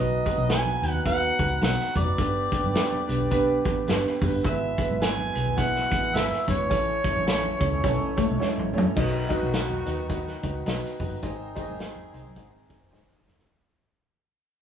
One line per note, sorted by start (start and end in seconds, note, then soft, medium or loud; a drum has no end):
0.00 0.21 B1 loud
0.00 2.17 D#3 medium
0.00 2.17 F#3 medium
0.00 0.17 B3 medium
0.00 4.41 B3 medium
0.00 0.17 D#4 medium
0.00 0.18 F#4 medium
0.00 2.17 F#4 medium
0.00 0.18 B4 medium
0.00 0.46 D#5 medium
0.09 muted conga soft
0.25 0.43 B3 medium
0.25 0.43 D#4 medium
0.25 0.43 F#4 medium
0.25 0.43 B4 medium
0.25 kick medium
0.25 closed hi-hat medium
0.37 0.76 B1 loud
0.37 high conga medium
0.48 0.73 B3 medium
0.48 0.74 D#4 medium
0.48 0.74 F#4 medium
0.48 0.74 B4 medium
0.48 0.90 G#5 loud
0.48 snare loud
0.48 closed hi-hat medium
0.65 muted conga soft
0.65 high conga medium
0.82 1.30 D#2 medium
0.82 0.99 B3 medium
0.82 1.00 D#4 medium
0.82 1.00 F#4 medium
0.82 1.00 B4 medium
0.82 closed hi-hat medium
0.90 1.02 F#5 loud
0.90 low conga medium
1.05 1.30 B3 loud
1.05 1.30 D#4 medium
1.05 1.30 F#4 medium
1.05 1.31 B4 loud
1.05 1.58 F#5 loud
1.05 kick medium
1.05 closed hi-hat medium
1.39 1.59 C#2 medium
1.39 1.56 B3 medium
1.39 1.56 D#4 medium
1.39 1.56 F#4 medium
1.39 1.57 B4 medium
1.39 kick medium
1.39 closed hi-hat medium
1.61 1.76 B1 medium
1.61 1.86 B3 medium
1.61 1.87 D#4 medium
1.61 1.87 F#4 medium
1.61 1.87 B4 medium
1.61 1.93 F#5 medium
1.61 snare loud
1.61 closed hi-hat medium
1.61 muted conga soft
1.61 high conga medium
1.79 snare soft
1.79 muted conga soft
1.95 2.06 F1 medium
1.95 2.12 B3 medium
1.95 2.13 D#4 medium
1.95 2.13 F#4 medium
1.95 2.13 B4 medium
1.95 4.18 D5 medium
1.95 kick medium
1.95 closed hi-hat medium
1.95 high conga medium
1.95 low conga medium
2.08 2.17 F#1 medium
2.17 2.47 G1 loud
2.17 4.42 D3 medium
2.17 4.42 G3 medium
2.17 2.43 B3 medium
2.17 2.43 D4 medium
2.17 4.42 G4 medium
2.17 2.43 G4 medium
2.17 2.44 B4 loud
2.17 kick loud
2.17 closed hi-hat medium
2.17 muted conga soft
2.34 muted conga soft
2.51 2.69 B3 medium
2.51 2.69 D4 medium
2.51 2.69 G4 medium
2.51 2.69 B4 medium
2.51 kick loud
2.51 closed hi-hat medium
2.64 2.73 G1 loud
2.64 high conga medium
2.74 2.99 B3 medium
2.74 2.99 D4 medium
2.74 3.00 G4 medium
2.74 3.00 B4 medium
2.74 snare loud
2.74 closed hi-hat medium
2.74 muted conga soft
2.92 muted fingered electric bass stroke soft
2.92 muted conga soft
2.92 high conga medium
3.07 3.57 B1 medium
3.07 3.25 B3 medium
3.07 3.25 D4 medium
3.07 3.25 G4 medium
3.07 3.25 B4 loud
3.07 closed hi-hat medium
3.21 low conga medium
3.30 3.56 B3 loud
3.30 3.56 D4 loud
3.30 3.56 G4 loud
3.30 3.56 B4 loud
3.30 kick medium
3.30 closed hi-hat medium
3.30 muted conga soft
3.64 3.85 A1 medium
3.64 3.82 B3 medium
3.64 3.82 D4 medium
3.64 3.82 G4 medium
3.64 3.82 B4 medium
3.64 kick medium
3.64 closed hi-hat medium
3.87 4.03 G1 medium
3.87 4.13 B3 medium
3.87 4.13 D4 medium
3.87 4.13 G4 medium
3.87 4.13 B4 loud
3.87 snare loud
3.87 closed hi-hat medium
3.87 high conga medium
4.05 snare soft
4.05 muted conga soft
4.21 4.32 F#1 medium
4.21 4.39 B3 medium
4.21 4.39 D4 medium
4.21 4.39 G4 medium
4.21 4.39 B4 loud
4.21 kick medium
4.21 open hi-hat medium
4.21 high conga medium
4.21 low conga medium
4.34 4.44 G1 medium
4.44 4.73 G#1 loud
4.44 6.69 B2 medium
4.44 8.93 E3 medium
4.44 6.69 G#3 medium
4.44 4.69 B3 medium
4.44 4.69 E4 medium
4.44 8.93 E4 medium
4.44 4.69 G#4 medium
4.44 4.69 B4 loud
4.44 4.97 E5 loud
4.44 kick loud
4.44 closed hi-hat medium
4.61 muted conga soft
4.77 4.95 B3 medium
4.77 4.95 E4 medium
4.77 4.95 G#4 medium
4.77 4.95 B4 medium
4.77 kick medium
4.77 closed hi-hat medium
4.89 5.28 G#1 medium
4.89 high conga medium
4.99 5.25 B3 medium
4.99 5.25 E4 medium
4.99 5.25 G#4 medium
4.99 5.26 B4 medium
4.99 5.60 G#5 loud
4.99 snare loud
4.99 closed hi-hat medium
4.99 muted conga soft
5.17 high conga medium
5.33 5.83 B1 medium
5.33 5.51 B3 medium
5.33 5.51 E4 medium
5.33 5.51 G#4 medium
5.33 5.51 B4 medium
5.33 closed hi-hat medium
5.46 low conga medium
5.56 5.82 B3 medium
5.56 5.82 E4 medium
5.56 5.82 G#4 medium
5.56 5.82 B4 loud
5.56 6.16 F#5 loud
5.56 kick medium
5.56 closed hi-hat medium
5.75 snare soft
5.75 muted conga soft
5.90 6.11 A1 medium
5.90 6.08 B3 medium
5.90 6.08 E4 medium
5.90 6.08 G#4 medium
5.90 6.08 B4 medium
5.90 kick medium
5.90 closed hi-hat medium
6.13 6.29 G#1 medium
6.13 6.39 B3 medium
6.13 6.39 E4 medium
6.13 6.39 G#4 medium
6.13 6.39 B4 medium
6.13 6.48 E5 loud
6.13 snare loud
6.13 closed hi-hat medium
6.13 muted conga soft
6.13 high conga medium
6.31 snare soft
6.31 muted conga soft
6.46 6.58 G1 medium
6.46 6.64 B3 medium
6.46 6.64 E4 medium
6.46 6.64 G#4 medium
6.46 6.65 B4 medium
6.46 8.70 C#5 medium
6.46 kick medium
6.46 closed hi-hat medium
6.46 high conga medium
6.46 low conga medium
6.60 6.69 G#1 medium
6.69 6.99 A1 medium
6.69 8.95 C#3 medium
6.69 6.95 C#4 medium
6.69 8.95 C#4 medium
6.69 6.95 E4 medium
6.69 6.95 A4 medium
6.69 6.95 C#5 loud
6.69 kick loud
6.69 closed hi-hat medium
6.69 muted conga soft
6.86 muted conga soft
7.03 7.21 C#4 medium
7.03 7.21 E4 medium
7.03 7.21 A4 medium
7.03 7.21 C#5 medium
7.03 kick loud
7.03 closed hi-hat medium
7.16 7.55 A1 loud
7.16 high conga medium
7.26 7.52 C#4 medium
7.26 7.52 E4 medium
7.26 7.52 A4 medium
7.26 7.52 C#5 medium
7.26 snare loud
7.26 closed hi-hat medium
7.26 muted conga soft
7.44 muted conga soft
7.44 high conga medium
7.59 7.80 C#2 medium
7.59 7.77 C#4 medium
7.59 7.77 E4 medium
7.59 7.77 A4 medium
7.59 7.78 C#5 loud
7.59 kick medium
7.59 closed hi-hat medium
7.72 low conga medium
7.83 7.98 B1 medium
7.83 8.09 C#4 loud
7.83 8.00 D#4 medium
7.83 8.08 E4 loud
7.83 8.09 A4 loud
7.83 8.00 B4 medium
7.83 8.09 C#5 loud
7.83 kick medium
7.83 closed hi-hat medium
7.83 muted conga soft
8.01 8.15 A1 medium
8.01 8.17 C#4 medium
8.01 8.16 A4 medium
8.16 8.29 A3 medium
8.16 8.34 C#4 medium
8.16 8.34 E4 medium
8.16 8.28 F#4 medium
8.16 8.34 A4 medium
8.16 8.34 C#5 medium
8.16 kick medium
8.16 closed hi-hat medium
8.29 8.39 B1 medium
8.29 8.94 G#3 medium
8.29 8.93 E4 medium
8.39 8.65 C#4 medium
8.39 8.65 E4 medium
8.39 8.65 A4 medium
8.39 8.65 C#5 loud
8.39 snare medium
8.39 high conga medium
8.57 8.72 A1 medium
8.57 mid tom medium
8.57 muted conga soft
8.73 8.94 A2 medium
8.73 8.91 C#4 medium
8.73 8.91 E4 medium
8.73 8.91 A4 medium
8.73 8.91 C#5 loud
8.73 high conga medium
8.73 low conga medium
8.78 floor tom loud
8.96 9.25 B1 medium
8.96 13.45 D#3 medium
8.96 10.96 D#3 medium
8.96 11.21 B3 medium
8.96 10.96 B3 medium
8.96 9.21 D#4 loud
8.96 9.21 F#4 loud
8.96 10.96 F#4 medium
8.96 9.22 B4 medium
8.96 9.22 D#5 loud
8.96 kick loud
8.96 crash medium
9.28 9.47 D#4 loud
9.28 9.47 F#4 loud
9.28 9.47 B4 loud
9.28 9.47 D#5 loud
9.28 kick medium
9.28 closed hi-hat medium
9.42 9.81 B1 loud
9.42 high conga medium
9.52 9.78 D#4 medium
9.52 9.78 F#4 medium
9.52 9.78 B4 medium
9.52 9.78 D#5 medium
9.52 snare loud
9.52 closed hi-hat medium
9.70 muted conga soft
9.70 high conga medium
9.70 low conga medium
9.86 10.35 D#2 medium
9.86 10.03 D#4 medium
9.86 10.04 F#4 medium
9.86 10.04 B4 medium
9.86 10.04 D#5 medium
9.86 closed hi-hat medium
9.98 low conga medium
10.09 10.34 D#4 medium
10.09 10.34 F#4 medium
10.09 10.34 B4 medium
10.09 10.35 D#5 medium
10.09 kick medium
10.09 closed hi-hat medium
10.09 muted conga soft
10.27 snare soft
10.27 muted conga soft
10.42 10.63 C#2 medium
10.42 10.60 D#4 medium
10.42 10.60 F#4 medium
10.42 10.60 B4 medium
10.42 10.60 D#5 medium
10.42 kick medium
10.42 closed hi-hat medium
10.66 10.81 B1 medium
10.66 10.91 D#4 loud
10.66 10.91 F#4 loud
10.66 10.91 B4 loud
10.66 10.92 D#5 loud
10.66 snare loud
10.66 closed hi-hat medium
10.66 muted conga soft
10.66 high conga medium
10.83 snare soft
10.83 muted conga soft
10.99 11.10 F#1 medium
10.99 11.17 D#4 medium
10.99 11.17 F#4 medium
10.99 11.17 B4 medium
10.99 11.17 D#5 loud
10.99 kick medium
10.99 open hi-hat medium
10.99 high conga medium
10.99 low conga medium
11.11 11.21 G1 medium
11.22 11.51 G#1 medium
11.22 13.48 C3 medium
11.22 13.22 D#3 medium
11.22 13.48 G#3 medium
11.22 13.22 C4 medium
11.22 11.48 D#4 loud
11.22 13.48 D#4 medium
11.22 11.48 G#4 loud
11.22 13.22 G#4 medium
11.22 11.48 C5 loud
11.22 11.48 D#5 loud
11.22 kick medium
11.22 closed hi-hat medium
11.22 muted conga soft
11.39 muted conga soft
11.55 11.73 D#4 loud
11.55 11.73 G#4 loud
11.55 11.73 C5 loud
11.55 11.73 D#5 loud
11.55 kick medium
11.55 closed hi-hat medium
11.68 12.06 G#1 medium
11.68 high conga medium
11.79 12.04 D#4 medium
11.79 12.04 G#4 medium
11.79 12.04 C5 medium
11.79 12.04 D#5 medium
11.79 snare loud
11.79 closed hi-hat medium
11.96 high conga medium
11.96 low conga medium
12.12 12.33 C2 medium
12.12 12.30 D#4 medium
12.12 12.30 G#4 medium
12.12 12.30 C5 medium
12.12 12.30 D#5 medium
12.12 closed hi-hat medium
12.24 12.36 F#3 medium
12.24 12.35 D#4 medium
12.24 low conga medium
12.35 12.74 G#1 loud
12.35 12.61 D#4 medium
12.35 12.52 F#4 medium
12.35 12.61 G#4 medium
12.35 12.61 C5 medium
12.35 12.61 D#5 loud
12.35 kick medium
12.35 closed hi-hat medium
12.35 muted conga soft
12.53 12.80 C4 medium
12.53 12.79 G#4 medium
12.53 muted conga soft
12.69 12.87 D#4 medium
12.69 12.87 G#4 medium
12.69 12.87 C5 medium
12.69 12.87 D#5 medium
12.69 kick medium
12.69 closed hi-hat medium
12.81 12.91 F#1 medium
12.81 13.46 D#4 medium
12.81 13.46 C5 medium
12.91 13.07 G#1 medium
12.91 13.17 D#4 loud
12.91 13.17 G#4 loud
12.91 13.17 C5 loud
12.91 13.17 D#5 loud
12.91 snare medium
12.91 muted conga soft
12.91 high conga medium
13.25 13.36 F#1 medium
13.25 13.43 D#4 medium
13.25 13.43 G#4 medium
13.25 13.43 C5 medium
13.25 13.43 D#5 medium
13.25 snare medium
13.25 high conga medium
13.25 low conga medium
13.38 13.47 G1 medium
13.38 snare medium